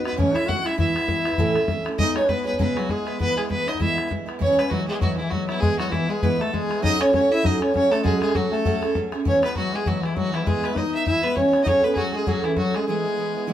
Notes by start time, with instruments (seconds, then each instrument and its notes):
0.04 duduk B3, twelve-string acoustic guitar D#4 F#4 B4, fiddle B4, bodhran
0.13 bodhran
0.17 twelve-string acoustic guitar A2 E3 G#3 C#4 E4, duduk C#4, fiddle C#5, bodhran
0.34 twelve-string acoustic guitar G#3 C#4 E4, duduk E4, fiddle E5, bodhran
0.47 twelve-string acoustic guitar E3 G#3 C#4 E4, duduk F#4, fiddle F#5, bodhran
0.65 twelve-string acoustic guitar G#3 C#4 E4, duduk E4, fiddle E5, bodhran
0.78 twelve-string acoustic guitar E3 G#3 B3 E4, duduk E4, fiddle E5, bodhran
0.94 twelve-string acoustic guitar G#3 B3 E4, bodhran
1.07 twelve-string acoustic guitar E3 G#3 B3 E4, bodhran
1.25 twelve-string acoustic guitar G#3 B3 E4, bodhran
1.32 bodhran
1.38 twelve-string acoustic guitar A2 E3 A3 C#4 E4, bodhran
1.55 twelve-string acoustic guitar A3 C#4 E4, bodhran
1.68 twelve-string acoustic guitar E3 A3 C#4 E4, bodhran
1.85 twelve-string acoustic guitar A3 C#4 E4, bodhran
1.98 twelve-string acoustic guitar G#3 B3 D#4 G#4, duduk D#4, fiddle D#5, bodhran
2.16 twelve-string acoustic guitar B3 D#4 G#4, fiddle C#5, bodhran
2.29 twelve-string acoustic guitar G#3 B3 D#4 G#4, duduk B3, fiddle B4, bodhran
2.42 twelve-string acoustic guitar G#4, fiddle B4 C#5
2.47 duduk B3, twelve-string acoustic guitar B3 D#4
2.53 bodhran
2.57 twelve-string acoustic guitar C#3 G#3 B3 E4 G#4, duduk B3 C#4, fiddle B4, bodhran
2.76 duduk F#3, twelve-string acoustic guitar B3 E4 G#4, fiddle F#4, bodhran
2.89 twelve-string acoustic guitar G#3 B3 E4 G#4, duduk G#3, fiddle G#4, bodhran
3.05 twelve-string acoustic guitar B3 E4 G#4, fiddle B4, bodhran
3.19 twelve-string acoustic guitar E3 G#3 B3 E4, duduk B3, fiddle B4, bodhran
3.36 duduk G#3, twelve-string acoustic guitar G#3 B3 E4, fiddle G#4, bodhran
3.49 twelve-string acoustic guitar E3 G#3 B3 E4, duduk B3, fiddle B4, bodhran
3.66 twelve-string acoustic guitar G#3 B3 E4, duduk D#4, fiddle D#5, bodhran
3.74 bodhran
3.79 twelve-string acoustic guitar E3 G#3 B3 E4, duduk E4, fiddle E5, bodhran
3.96 twelve-string acoustic guitar G#3 B3 E4, bodhran
4.09 twelve-string acoustic guitar E3 G#3 B3 E4, bodhran
4.26 twelve-string acoustic guitar G#3 B3 E4, bodhran
4.39 twelve-string acoustic guitar E3 G#3 B3 E4, duduk C#4, fiddle C#5, bodhran
4.57 twelve-string acoustic guitar G#3 B3 E4, fiddle B4, bodhran
4.70 twelve-string acoustic guitar E3 G#3 B3 E4, duduk F#3, fiddle F#4, bodhran
4.87 duduk G#3, twelve-string acoustic guitar G#3 B3 E4, fiddle G#4
5.01 twelve-string acoustic guitar E3 G#3 B3 E4, duduk F#3, fiddle F#4, bodhran
5.17 duduk E3, twelve-string acoustic guitar B3 E4, fiddle E4
5.21 twelve-string acoustic guitar G#3
5.30 twelve-string acoustic guitar E3 G#3 B3 E4, duduk F#3, fiddle F#4, bodhran
5.48 twelve-string acoustic guitar G#3 B3 E4, fiddle E4, bodhran
5.60 twelve-string acoustic guitar E3 G#3 B3 E4, duduk G#3, fiddle G#4, bodhran
5.79 duduk F#3, twelve-string acoustic guitar B3 E4, fiddle F#4, bodhran
5.83 twelve-string acoustic guitar G#3
5.92 duduk E3, twelve-string acoustic guitar E3 G#3 B3 E4, fiddle E4, bodhran
6.09 duduk G#3, twelve-string acoustic guitar G#3 B3 E4, fiddle G#4
6.22 twelve-string acoustic guitar E3 G#3 B3 E4, duduk B3, fiddle B4, bodhran
6.39 twelve-string acoustic guitar G#3 B3 E4, duduk A3, fiddle A4, bodhran
6.53 twelve-string acoustic guitar E3 G#3 B3 E4, duduk G#3, fiddle G#4, bodhran
6.69 twelve-string acoustic guitar G#3 B3 E4, bodhran
6.82 twelve-string acoustic guitar F#3 A3 C#4 G#4, duduk D#4, fiddle D#5, bodhran
6.99 twelve-string acoustic guitar A3 C#4 G#4, duduk C#4, fiddle C#5, bodhran
7.12 twelve-string acoustic guitar F#3 A3 C#4 G#4, duduk C#4, fiddle C#5, bodhran
7.29 twelve-string acoustic guitar A3 C#4 G#4, duduk E4, fiddle E5
7.43 twelve-string acoustic guitar F#3 A3 C#4 G#4, duduk D#4, fiddle D#5, bodhran
7.58 duduk C#4, twelve-string acoustic guitar G#4, fiddle D#5
7.62 twelve-string acoustic guitar A3 C#4, fiddle C#5, bodhran
7.73 twelve-string acoustic guitar F#3 A3 C#4 G#4, duduk C#4, fiddle C#5, bodhran
7.91 duduk A3, twelve-string acoustic guitar A3 C#4 G#4, fiddle A4, bodhran
8.04 twelve-string acoustic guitar F#3 A3 C#4 G#4, duduk G#3, fiddle G#4, bodhran
8.21 duduk G#3, twelve-string acoustic guitar A3 C#4 G#4, fiddle G#4, bodhran
8.29 bodhran
8.35 twelve-string acoustic guitar F#3 A3 C#4 G#4, duduk F#3, fiddle F#4, bodhran
8.51 duduk A3, twelve-string acoustic guitar A3 C#4 G#4, fiddle A4
8.65 twelve-string acoustic guitar F#3 A3 C#4 G#4, bodhran
8.82 twelve-string acoustic guitar A3 C#4 G#4, bodhran
8.95 twelve-string acoustic guitar F#3 A3 C#4 G#4, bodhran
9.12 twelve-string acoustic guitar A3 C#4 G#4, bodhran
9.25 twelve-string acoustic guitar E3 G#3 B3 E4, duduk C#4, fiddle C#5, bodhran
9.42 twelve-string acoustic guitar G#3 B3 E4, duduk B3, fiddle B4, bodhran
9.55 twelve-string acoustic guitar E3 G#3 B3 E4, duduk F#3, fiddle F#4, bodhran
9.73 duduk G#3, twelve-string acoustic guitar G#3 B3 E4, fiddle G#4
9.85 twelve-string acoustic guitar E3 G#3 B3 E4, duduk F#3, fiddle F#4, bodhran
10.03 duduk E3, twelve-string acoustic guitar G#3 B3 E4, fiddle E4, bodhran
10.15 twelve-string acoustic guitar E3 G#3 B3, duduk F#3, fiddle F#4, bodhran
10.19 twelve-string acoustic guitar E4
10.33 duduk E3, twelve-string acoustic guitar G#3 B3 E4, fiddle E4, bodhran
10.46 twelve-string acoustic guitar E3 G#3 B3 E4, duduk G#3, fiddle G#4, bodhran
10.63 twelve-string acoustic guitar G#3 B3 E4, fiddle B4, bodhran
10.76 twelve-string acoustic guitar E3 G#3 B3 E4, duduk D#4, fiddle D#5, bodhran
10.93 twelve-string acoustic guitar G#3 B3 E4, fiddle E5
11.06 twelve-string acoustic guitar E3 G#3 B3 E4, duduk E4, fiddle E5, bodhran
11.23 twelve-string acoustic guitar G#3 B3 E4, duduk B3, fiddle B4, bodhran
11.36 twelve-string acoustic guitar E3 G#3 B3 E4, duduk C#4, fiddle C#5, bodhran
11.53 twelve-string acoustic guitar G#3 B3 E4, bodhran
11.64 twelve-string acoustic guitar F#3 A3 C#4, duduk C#4 D#4, fiddle C#5 D#5, bodhran
11.68 twelve-string acoustic guitar G#4
11.82 twelve-string acoustic guitar A3 C#4 G#4, duduk B3, fiddle B4
11.95 twelve-string acoustic guitar F#3 A3 C#4 G#4, duduk F#3, fiddle F#4 G#4, bodhran
12.12 duduk G#3, twelve-string acoustic guitar A3 C#4 G#4, fiddle G#4
12.26 twelve-string acoustic guitar F#3 A3 C#4 G#4, duduk F#3, fiddle F#4, bodhran
12.44 duduk E3, twelve-string acoustic guitar A3 C#4 G#4, fiddle E4, bodhran
12.56 twelve-string acoustic guitar F#3 A3 C#4 G#4, duduk F#3, fiddle F#4, bodhran
12.74 duduk G#3, twelve-string acoustic guitar A3 C#4 G#4, fiddle G#4, bodhran
12.87 twelve-string acoustic guitar E3 G#3 B3 E4, duduk G#3, fiddle G#4
13.04 twelve-string acoustic guitar G#3 B3 E4
13.17 twelve-string acoustic guitar E3 G#3 B3 E4
13.35 twelve-string acoustic guitar G#3 B3 E4
13.47 twelve-string acoustic guitar E3 G#3 B3 E4